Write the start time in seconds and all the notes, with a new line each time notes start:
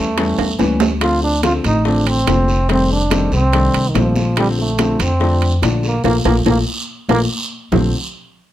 Already playing: E2 A3
0.17 E3 G3 B3 C#4, high bongo, high conga, high timbale, long guiro
0.38 E2, high conga, high timbale
0.59 D2 E3 G3 B3 C#4, high bongo, low bongo, high conga, high timbale, short guiro
0.80 high bongo, high conga, low timbale, short guiro
1.01 D3 F3 A3 C4 F4, high bongo, high conga, high timbale, long guiro
1.22 D4, high bongo, high conga
1.43 D3 F3 A3 C4 F4, high bongo, high conga, high timbale, short guiro
1.64 A1 D#4, high bongo, high conga, high timbale, short guiro
1.85 D3 F3 A3 C4 D4, high bongo, high conga, long guiro
2.07 C4, high conga, high timbale
2.27 F1 D3 F3 A3 C4, high bongo, low bongo, high conga, high timbale, low timbale, short guiro
2.48 high bongo, high conga, short guiro
2.69 D#3 G3 A3 C4, high bongo, high conga, high timbale, long guiro
2.90 D4, high bongo, high conga
3.10 D#3 G3 A3 C4, high bongo, high conga, high timbale, short guiro
3.32 C2 C4, high bongo, high conga, short guiro
3.53 D#3 G3 A3 D4, high bongo, high conga, high timbale, long guiro
3.74 C2, high conga, high timbale
3.89 D#3
3.94 A#1 D#3 F3 G3 A3 C4, high bongo, low bongo, high conga, high timbale, low timbale, short guiro
4.16 high bongo, high conga, short guiro
4.36 D3 F3 G3 A3 C4, high bongo, high timbale, long guiro
4.58 A3, high bongo, high conga
4.78 D3 F3 A3 C4, high bongo, high conga, high timbale, short guiro
4.99 F2 C4, high bongo, high conga, high timbale, short guiro
5.20 D3 F3 A3 D4, high bongo, high conga, long guiro
5.42 high conga, high timbale
5.62 A#1 D3 F3 A3 D4, high bongo, low bongo, high conga, high timbale, short guiro
5.83 A#3, high bongo, high conga, short guiro
6.04 A#1 F3 A3 A#3, low bongo, high conga, high timbale, long guiro
6.25 A#1 F3 A3 A#3, low bongo, high conga, high timbale, long guiro
6.45 A#1 F3 A3 A#3, low bongo, high conga, high timbale, long guiro
7.09 A#1 F3 A3 A#3, low bongo, high conga, high timbale, long guiro
7.72 A#1 D3 F3 A3 C4, low bongo, low conga, low timbale, long guiro